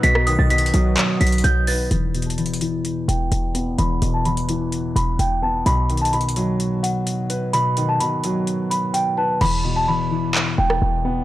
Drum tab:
CC |------------------------------------------------------------------------------------------------|------------------------------------------------------------------------------------------------|------------------------------------------------------------------------------------------------|------------------------------------------------------------------------------------------------|
HH |x-----------x-----------x---x---x---x-----------x-----------x--x--x--x--x-----------o-----------|x-----------x---x---x---x---x---x---x-----------x-----------x-----------x-----------x-----------|x-----------x-----------x-----x-----x-----------x-----------x-----------x-----------------------|x-----------x---x---x---x---x---x---x-----------x-----------x-----------x-----------x-----------|
CP |------------------------------------------------x-----------------------------------------------|------------------------------------------------------------------------------------------------|------------------------------------------------------------------------------------------------|------------------------------------------------------------------------------------------------|
SD |------r-----------------------------------------------------------------------------------------|------------------------------------------------------------------------------------------------|------------------------------------------------------------------------------------------------|------------------------------------------------------------------------------------------------|

CC |------------------------------------------------------------------------------------------------|x-----------------------------------------------------------------------------------------------|
HH |x-----------x-----------x-----------x-----------x-----------x-----------x-----------------------|------------------------------------------------------------------------------------------------|
CP |------------------------------------------------------------------------------------------------|------------------------------------------------x-----------------------------------------------|
SD |------------------------------------------------------------------------------------------------|------------------------------------------------------------------r-----------------------------|